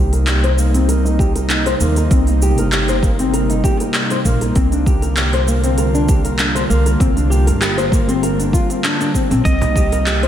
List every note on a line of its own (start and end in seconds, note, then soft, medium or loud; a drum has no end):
0.00 1.76 C2 medium
0.00 4.52 C3 medium
0.00 10.28 G3 medium
0.00 10.28 A#3 medium
0.00 4.52 D#4 medium
0.00 0.11 G4 medium
0.13 0.26 A#4 medium
0.13 open hi-hat soft
0.13 shaker soft
0.27 0.42 G4 medium
0.27 clap loud
0.27 open hi-hat medium
0.27 shaker soft
0.44 0.56 C5 medium
0.44 open hi-hat soft
0.58 0.72 A#3 medium
0.58 shaker medium
0.74 0.88 C4 loud
0.74 open hi-hat soft
0.74 shaker soft
0.88 1.04 A#4 medium
0.88 open hi-hat medium
0.88 shaker soft
1.05 1.18 D#4 medium
1.05 shaker soft
1.19 1.34 G4 loud
1.19 kick medium
1.19 shaker medium
1.35 1.49 A#4 medium
1.35 open hi-hat soft
1.35 shaker soft
1.50 1.64 D#4 medium
1.50 clap medium
1.50 open hi-hat medium
1.50 shaker soft
1.66 1.74 C5 medium
1.66 open hi-hat soft
1.66 shaker soft
1.80 2.06 D#2 medium
1.80 1.95 A#3 medium
1.80 shaker medium
1.96 2.10 A#4 medium
1.96 open hi-hat soft
1.96 shaker soft
2.11 2.58 C2 medium
2.11 2.27 C4 medium
2.11 kick loud
2.11 open hi-hat soft
2.11 shaker soft
2.27 2.40 D#4 medium
2.27 open hi-hat soft
2.27 shaker soft
2.42 2.56 G4 medium
2.42 shaker medium
2.58 3.60 G1 medium
2.58 2.71 A#4 medium
2.58 open hi-hat soft
2.58 shaker soft
2.72 2.87 G4 medium
2.72 clap loud
2.72 open hi-hat medium
2.72 shaker soft
2.88 3.01 C5 medium
2.88 open hi-hat soft
2.88 shaker soft
3.03 3.17 A#3 medium
3.03 kick loud
3.03 shaker medium
3.19 3.33 C4 medium
3.19 open hi-hat soft
3.19 shaker soft
3.33 3.49 A#4 medium
3.33 open hi-hat medium
3.33 shaker soft
3.50 3.62 D#4 medium
3.50 open hi-hat soft
3.50 shaker soft
3.64 3.79 G4 loud
3.64 kick medium
3.64 shaker medium
3.80 3.94 A#4 medium
3.80 open hi-hat soft
3.80 shaker soft
3.94 4.09 D#4 medium
3.94 clap loud
3.94 open hi-hat medium
3.94 shaker soft
4.10 4.19 C5 medium
4.10 open hi-hat soft
4.10 shaker soft
4.25 4.51 A#1 medium
4.25 4.40 A#3 medium
4.25 kick medium
4.25 shaker medium
4.41 4.54 A#4 medium
4.41 open hi-hat soft
4.41 shaker soft
4.55 6.66 C2 medium
4.55 9.42 D3 medium
4.55 4.71 C4 medium
4.55 9.41 F4 medium
4.55 kick loud
4.55 open hi-hat medium
4.55 shaker soft
4.72 4.85 D4 medium
4.72 open hi-hat soft
4.72 shaker soft
4.86 5.01 G4 medium
4.86 kick loud
4.86 shaker medium
5.02 5.15 A#4 medium
5.02 open hi-hat soft
5.02 shaker soft
5.17 5.31 G4 medium
5.17 clap loud
5.17 open hi-hat medium
5.17 shaker soft
5.33 5.46 C5 medium
5.33 open hi-hat soft
5.47 5.62 A#3 medium
5.47 shaker medium
5.64 5.77 C4 medium
5.64 open hi-hat soft
5.64 shaker soft
5.78 5.94 A#4 medium
5.78 open hi-hat soft
5.78 shaker soft
5.94 6.07 D4 medium
5.94 shaker soft
6.09 6.23 G4 loud
6.09 kick loud
6.09 shaker medium
6.25 6.39 A#4 medium
6.25 open hi-hat soft
6.25 shaker soft
6.39 6.54 D4 medium
6.39 clap loud
6.39 open hi-hat medium
6.39 shaker soft
6.55 6.63 C5 loud
6.55 open hi-hat soft
6.55 shaker soft
6.69 6.96 C2 medium
6.69 6.84 A#3 medium
6.69 shaker medium
6.86 6.99 A#4 medium
6.86 open hi-hat soft
6.86 shaker soft
7.00 7.49 C2 medium
7.00 7.16 C4 loud
7.00 kick loud
7.00 open hi-hat soft
7.00 shaker soft
7.16 7.29 D4 medium
7.16 open hi-hat soft
7.16 shaker soft
7.30 7.45 G4 loud
7.30 shaker medium
7.47 8.50 G1 medium
7.47 7.60 A#4 medium
7.47 open hi-hat soft
7.47 shaker soft
7.61 7.76 G4 medium
7.61 clap medium
7.61 open hi-hat medium
7.61 shaker soft
7.78 7.91 C5 medium
7.78 open hi-hat soft
7.78 shaker soft
7.92 8.07 A#3 medium
7.92 kick loud
7.92 shaker medium
8.08 8.22 C4 loud
8.08 open hi-hat soft
8.08 shaker soft
8.23 8.38 A#4 medium
8.23 open hi-hat medium
8.23 shaker soft
8.39 8.52 D4 medium
8.39 open hi-hat soft
8.39 shaker soft
8.53 8.69 F4 medium
8.53 kick medium
8.53 shaker medium
8.70 8.83 C4 medium
8.70 open hi-hat soft
8.70 shaker soft
8.84 8.99 D4 medium
8.84 clap loud
8.84 open hi-hat soft
8.84 shaker soft
9.00 9.13 D4 loud
9.00 open hi-hat soft
9.00 shaker soft
9.14 9.29 C4 loud
9.14 kick medium
9.14 shaker medium
9.31 9.43 A#1 medium
9.31 9.44 C4 medium
9.31 open hi-hat soft
9.31 shaker soft
9.45 10.28 C2 medium
9.45 10.28 C3 medium
9.45 9.61 C4 medium
9.45 10.28 D#4 medium
9.45 10.28 D#5 medium
9.45 kick loud
9.45 open hi-hat soft
9.45 shaker soft
9.61 9.75 D#4 medium
9.61 cajon bass medium
9.61 open hi-hat soft
9.61 shaker soft
9.75 9.91 G4 loud
9.75 kick loud
9.75 cajon slap medium
9.75 shaker medium
9.92 10.05 A#4 medium
9.92 cajon slap medium
9.92 open hi-hat soft
9.92 shaker soft
10.07 10.21 G4 medium
10.07 clap medium
10.07 open hi-hat medium
10.07 shaker soft
10.23 10.28 C5 medium
10.23 open hi-hat soft